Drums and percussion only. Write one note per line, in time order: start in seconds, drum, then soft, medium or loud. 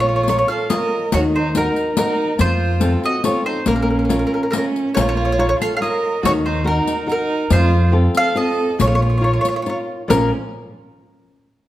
0.28 riq medium
0.49 riq soft
0.70 riq medium
1.12 riq medium
1.55 riq medium
1.76 riq soft
1.97 riq medium
2.39 riq medium
2.81 riq medium
3.03 riq soft
3.24 riq medium
3.66 riq medium
4.10 riq medium
4.53 riq medium
4.76 riq soft
4.97 riq medium
5.62 riq soft
5.83 riq soft
6.25 riq medium
6.87 riq soft
7.09 riq soft
7.50 riq medium
8.15 riq soft
8.36 riq soft
8.80 riq medium
9.45 riq soft
9.66 riq soft
10.10 riq medium